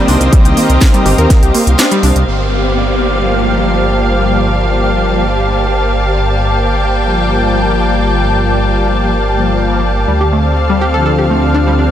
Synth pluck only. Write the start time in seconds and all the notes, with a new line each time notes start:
0.08 D4
0.33 G3
0.45 G4
0.57 A#3
0.94 G3
1.06 G4
1.18 A#4
1.30 A#4
1.43 G4
1.54 A#3
1.79 D4
1.92 G3
2.03 D4
10.08 G3
10.21 G4
10.33 A3
10.70 G3
10.81 G4
10.94 A4
11.06 A4
11.18 G4
11.30 A3
11.54 D4
11.67 G3
11.79 D4